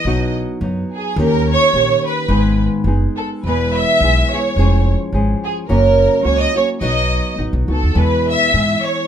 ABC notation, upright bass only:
X:1
M:2/4
L:1/16
Q:"Swing" 1/4=106
K:E
V:1 name="Upright bass" clef=bass
B,,,4 F,,2 z2 | D,,4 ^A,,,2 z2 | G,,,4 F,,,2 z2 | E,,,4 B,,,2 z2 |
^E,,,4 G,,,2 z2 | F,,,4 C,,2 z2 | B,,,4 A,,, B,,, C,, D,, | E,,4 G,,2 z2 |]